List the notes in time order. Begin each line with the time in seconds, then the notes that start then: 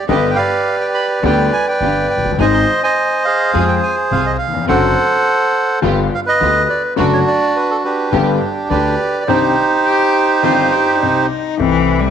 0.08 G1 G2 D3 G3 B3 D4 G4 B4 D#5
0.30 G5
0.36 B4 D5 F5
0.81 G5
0.94 B5
1.23 D2 D3 G3 B3 D4 G4 B4 D5 G5
1.53 G#5
1.68 B4 D5 G5
1.80 G1 G2 B3 D4 G4
2.10 G5
2.17 F1
2.25 F#1
2.31 G1
2.39 G#1 G#2 D#3 G#3 C4 D#4 G#4 C5 D#5 G#5
2.54 C6
2.83 C5 D#5 G#5
3.25 G#4 C5 F5
3.53 F2 F3 G#3 C4 F4 G#4
3.68 G5
3.83 G#5
4.11 C2 C3 C4 F4 G#4 F5
4.26 D#5
4.38 F5
4.47 D#2
4.54 E2
4.61 F2
4.69 F#1 F#2 D3 F#3 A3 C4 D4 F#4 A4 C5 F#5
5.82 G1 G2 D3 G3 B3 F4 G4
6.14 F5
6.26 B4 D#5
6.40 D2 D3 B3 F4 G4
6.70 D5
6.96 F#1 F#2 D3 F#3 A3 D4 F#4 B4
7.13 C#5
7.27 D5
7.56 B4
7.71 A4
7.85 D4 G4 B4
8.12 G1 G2 D3 G3 B3 D4 G4
8.69 D2 D3 B3 D4 G4 B4 D5
9.21 D5
9.28 C2 C3 D#3 C4 D4 D#4 G4 C5
9.86 G4
10.43 G1 G2 D#3 C4 D4 D#4 F4 G4
10.73 G4
10.95 D4
11.02 C2 C3 C4 D4 D#4
11.58 C2 C3 E3 A3 C4 E4
11.62 G4
12.00 G3